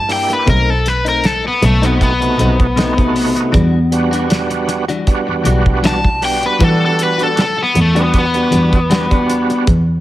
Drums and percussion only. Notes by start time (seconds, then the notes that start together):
0.09 open hi-hat
0.30 closed hi-hat
0.48 kick, closed hi-hat
0.86 snare, closed hi-hat
1.06 closed hi-hat
1.24 snare, closed hi-hat
1.62 closed hi-hat
1.83 closed hi-hat
2.01 kick, closed hi-hat
2.22 closed hi-hat
2.39 closed hi-hat
2.60 kick, closed hi-hat
2.77 snare, closed hi-hat
2.98 kick, closed hi-hat
3.16 open hi-hat
3.36 closed hi-hat
3.54 kick, closed hi-hat
3.92 closed hi-hat
4.13 closed hi-hat
4.30 snare, closed hi-hat
4.51 closed hi-hat
4.69 closed hi-hat
4.89 closed hi-hat
5.07 kick, closed hi-hat
5.45 closed hi-hat
5.66 kick
5.84 snare, closed hi-hat
6.04 kick
6.22 open hi-hat
6.43 closed hi-hat
6.60 kick, closed hi-hat
6.99 closed hi-hat
7.19 closed hi-hat
7.37 snare, closed hi-hat
7.75 closed hi-hat
7.96 closed hi-hat
8.14 kick, closed hi-hat
8.34 closed hi-hat
8.52 closed hi-hat
8.73 kick, closed hi-hat
8.91 snare, closed hi-hat
9.11 kick, closed hi-hat
9.30 closed hi-hat
9.50 closed hi-hat
9.67 kick, closed hi-hat